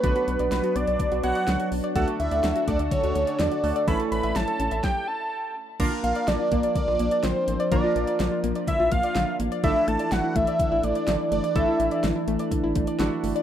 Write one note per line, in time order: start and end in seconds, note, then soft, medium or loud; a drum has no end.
0.00 0.13 B1 loud
0.00 0.13 D3 medium
0.00 1.94 F#3 medium
0.00 1.92 B3 medium
0.00 1.21 B3 medium
0.00 1.21 D4 medium
0.00 3.84 D4 medium
0.00 1.21 F#4 medium
0.00 0.51 B4 loud
0.00 1.21 B4 medium
0.00 kick loud
0.00 closed hi-hat medium
0.16 0.25 F#4 medium
0.16 closed hi-hat medium
0.28 0.37 B1 loud
0.28 closed hi-hat medium
0.39 0.49 B1 loud
0.39 0.49 D5 medium
0.39 closed hi-hat medium
0.51 0.61 B1 loud
0.51 0.77 B4 medium
0.51 snare loud
0.51 closed hi-hat medium
0.64 0.73 F#4 medium
0.64 closed hi-hat medium
0.76 0.85 B1 loud
0.76 0.85 B3 loud
0.76 1.23 D5 loud
0.76 closed hi-hat medium
0.87 0.97 B1 loud
0.87 0.97 D5 medium
0.87 closed hi-hat medium
0.99 1.09 D3 medium
0.99 kick loud
0.99 closed hi-hat medium
1.12 1.21 B1 loud
1.12 1.21 F#4 medium
1.12 closed hi-hat soft
1.24 1.33 B1 loud
1.24 1.96 B3 medium
1.24 1.33 B3 medium
1.24 1.94 D4 soft
1.24 1.94 F#4 soft
1.24 1.96 C#5 medium
1.24 1.68 F#5 medium
1.24 closed hi-hat medium
1.35 1.45 D5 medium
1.35 closed hi-hat medium
1.47 1.57 C#2 loud
1.47 1.57 D3 medium
1.47 snare loud
1.47 closed hi-hat medium
1.60 1.69 F#4 medium
1.60 closed hi-hat soft
1.72 1.81 B1 medium
1.72 1.81 B3 medium
1.72 open hi-hat medium
1.84 1.93 D5 loud
1.84 closed hi-hat soft
1.96 2.05 D2 loud
1.96 3.86 D3 medium
1.96 2.05 D3 medium
1.96 3.60 A3 medium
1.96 3.60 D4 medium
1.96 3.86 F#4 medium
1.96 3.60 F#4 medium
1.96 3.86 A4 loud
1.96 3.60 A4 medium
1.96 2.06 F#5 medium
1.96 kick loud
1.96 closed hi-hat medium
2.08 2.17 F#4 medium
2.08 closed hi-hat medium
2.20 2.29 D2 loud
2.20 2.64 E5 loud
2.20 closed hi-hat medium
2.31 2.41 D2 loud
2.31 2.41 D5 loud
2.31 closed hi-hat medium
2.44 2.53 D2 loud
2.44 snare loud
2.44 closed hi-hat medium
2.56 2.65 F#4 medium
2.56 closed hi-hat medium
2.68 2.77 D2 loud
2.68 2.77 A3 medium
2.68 2.78 D5 medium
2.68 kick loud
2.68 closed hi-hat medium
2.79 2.89 D2 loud
2.79 2.89 D5 medium
2.79 closed hi-hat medium
2.91 3.01 D3 medium
2.91 3.41 C#5 loud
2.91 kick loud
2.91 closed hi-hat medium
3.04 3.13 D2 loud
3.04 3.13 F#4 medium
3.04 closed hi-hat soft
3.15 3.25 D2 loud
3.15 3.25 A3 medium
3.15 closed hi-hat medium
3.27 3.37 D5 medium
3.27 closed hi-hat medium
3.39 3.49 E2 loud
3.39 3.49 D3 medium
3.39 3.87 D5 loud
3.39 snare loud
3.39 closed hi-hat medium
3.52 3.61 F#4 medium
3.52 closed hi-hat soft
3.63 3.73 D2 loud
3.63 3.73 A3 medium
3.63 3.87 A3 medium
3.63 3.88 D4 soft
3.63 3.88 F#4 soft
3.63 3.87 A4 medium
3.63 open hi-hat medium
3.76 3.85 D5 loud
3.76 closed hi-hat soft
3.88 3.97 A1 loud
3.88 3.97 E3 medium
3.88 4.83 A3 medium
3.88 4.82 A3 medium
3.88 4.83 C#4 medium
3.88 4.82 C#4 medium
3.88 4.83 E4 medium
3.88 4.82 E4 medium
3.88 4.82 A4 medium
3.88 3.98 B5 loud
3.88 kick loud
3.88 closed hi-hat medium
4.00 4.09 A4 medium
4.00 closed hi-hat medium
4.12 4.21 A1 medium
4.12 4.37 B5 loud
4.12 closed hi-hat medium
4.23 4.33 A1 loud
4.23 4.33 E5 medium
4.23 closed hi-hat medium
4.36 4.45 A1 loud
4.36 4.83 A5 loud
4.36 snare loud
4.36 closed hi-hat medium
4.48 4.57 A4 medium
4.48 closed hi-hat medium
4.60 4.69 A1 loud
4.60 4.69 C#4 medium
4.60 closed hi-hat medium
4.71 4.81 A1 loud
4.71 4.81 E5 medium
4.71 closed hi-hat medium
4.84 5.09 G5 loud
4.84 kick loud
4.84 snare medium
5.08 5.56 A5 medium
5.80 5.89 A#1 loud
5.80 5.89 D3 medium
5.80 9.60 F3 medium
5.80 7.70 A#3 medium
5.80 7.68 A#3 medium
5.80 13.43 D4 medium
5.80 7.68 D4 medium
5.80 7.68 F4 medium
5.80 7.68 A#4 medium
5.80 kick loud
5.80 closed hi-hat medium
5.80 crash loud
5.92 6.01 F4 medium
6.04 6.13 A#1 loud
6.04 6.13 A#3 medium
6.04 6.29 F5 loud
6.04 closed hi-hat medium
6.15 6.25 D5 loud
6.15 closed hi-hat medium
6.28 6.37 A#1 loud
6.28 6.37 D3 medium
6.28 6.75 D5 loud
6.28 snare loud
6.28 closed hi-hat medium
6.40 6.49 F4 medium
6.52 6.61 A#1 loud
6.52 6.61 A#3 loud
6.52 kick loud
6.52 closed hi-hat medium
6.63 6.73 D5 medium
6.63 closed hi-hat medium
6.75 6.85 D3 medium
6.75 7.25 D5 loud
6.75 kick loud
6.75 closed hi-hat medium
6.88 6.97 A#1 loud
6.88 6.97 F4 loud
6.99 7.09 A#1 loud
6.99 7.09 A#3 medium
6.99 closed hi-hat medium
7.11 7.21 D5 medium
7.11 closed hi-hat medium
7.23 7.33 A#1 loud
7.23 7.33 D3 medium
7.23 7.71 C5 loud
7.23 snare loud
7.23 closed hi-hat medium
7.48 7.57 A1 loud
7.48 7.57 A#3 medium
7.48 closed hi-hat medium
7.60 7.69 D5 loud
7.60 closed hi-hat soft
7.72 7.81 A#1 loud
7.72 7.81 D3 medium
7.72 9.60 A#3 medium
7.72 9.60 D4 medium
7.72 9.60 F4 medium
7.72 9.60 A#4 medium
7.72 8.40 D5 medium
7.72 kick loud
7.72 closed hi-hat medium
7.84 7.93 F4 medium
7.96 8.05 A#1 loud
7.96 8.05 A#3 medium
7.96 closed hi-hat medium
8.07 8.17 D5 loud
8.07 closed hi-hat medium
8.20 8.29 A#1 loud
8.20 8.29 D3 medium
8.20 snare loud
8.20 closed hi-hat medium
8.32 8.41 F4 medium
8.44 8.53 A#1 loud
8.44 8.53 A#3 loud
8.44 closed hi-hat medium
8.55 8.65 D5 medium
8.55 closed hi-hat medium
8.67 8.77 D3 medium
8.67 8.90 E5 loud
8.67 kick loud
8.67 closed hi-hat medium
8.80 8.89 A#1 loud
8.80 8.89 F4 loud
8.92 9.01 A#1 loud
8.92 9.01 A#3 medium
8.92 9.36 F5 loud
8.92 kick loud
8.92 closed hi-hat medium
9.03 9.13 D5 medium
9.03 closed hi-hat medium
9.15 9.25 A#1 medium
9.15 9.25 D3 medium
9.15 snare loud
9.15 closed hi-hat medium
9.40 9.49 A1 loud
9.40 9.49 A#3 medium
9.40 closed hi-hat medium
9.52 9.61 D5 loud
9.52 closed hi-hat soft
9.64 9.73 A1 loud
9.64 9.73 D3 medium
9.64 13.43 E3 medium
9.64 11.52 A3 medium
9.64 11.52 D4 medium
9.64 11.52 E4 medium
9.64 11.52 A4 medium
9.64 9.89 E5 loud
9.64 kick loud
9.64 closed hi-hat medium
9.76 9.85 E4 medium
9.88 9.97 A1 loud
9.88 9.97 A3 medium
9.88 10.13 A5 loud
9.88 closed hi-hat medium
9.99 10.09 D5 loud
9.99 closed hi-hat medium
10.12 10.21 A1 loud
10.12 10.21 D3 medium
10.12 10.37 F#5 loud
10.12 snare loud
10.12 closed hi-hat medium
10.24 10.33 E4 medium
10.36 10.45 A1 loud
10.36 10.45 A3 loud
10.36 10.85 E5 loud
10.36 kick loud
10.36 closed hi-hat medium
10.47 10.57 D5 medium
10.47 closed hi-hat medium
10.59 10.69 D3 medium
10.59 kick loud
10.59 closed hi-hat medium
10.72 10.81 A1 loud
10.72 10.81 E4 loud
10.83 10.93 A1 loud
10.83 10.93 A3 medium
10.83 11.31 D5 loud
10.83 closed hi-hat medium
10.95 11.05 D5 medium
10.95 closed hi-hat medium
11.07 11.17 A1 medium
11.07 11.17 D3 medium
11.07 snare loud
11.07 closed hi-hat medium
11.32 11.41 G1 loud
11.32 11.41 A3 medium
11.32 11.57 D5 medium
11.32 closed hi-hat medium
11.44 11.53 D5 loud
11.44 closed hi-hat soft
11.56 11.65 A1 loud
11.56 11.65 D3 medium
11.56 12.97 A3 medium
11.56 12.97 D4 medium
11.56 12.97 E4 medium
11.56 12.97 A4 medium
11.56 12.04 E5 medium
11.56 kick loud
11.56 closed hi-hat medium
11.68 11.77 E4 medium
11.80 11.89 A1 loud
11.80 11.89 A3 medium
11.80 closed hi-hat medium
11.91 12.01 D5 loud
11.91 closed hi-hat medium
12.04 12.13 A1 loud
12.04 12.13 D3 medium
12.04 snare loud
12.04 closed hi-hat medium
12.16 12.25 E4 medium
12.28 12.37 A1 loud
12.28 12.37 A3 medium
12.28 closed hi-hat medium
12.39 12.49 D5 medium
12.39 closed hi-hat medium
12.51 12.61 D3 medium
12.51 kick loud
12.51 closed hi-hat medium
12.64 12.73 A1 loud
12.64 12.73 E4 medium
12.75 12.85 A1 loud
12.75 12.85 A3 medium
12.75 kick loud
12.75 closed hi-hat medium
12.87 12.97 D5 medium
12.87 closed hi-hat medium
12.99 13.09 A1 loud
12.99 13.09 D3 medium
12.99 13.43 A3 medium
12.99 13.43 D4 medium
12.99 13.43 E4 medium
12.99 13.43 F#4 medium
12.99 snare loud
12.99 closed hi-hat medium
13.24 13.33 G1 loud
13.24 13.33 A3 medium
13.24 open hi-hat medium
13.36 13.43 D5 loud
13.36 closed hi-hat soft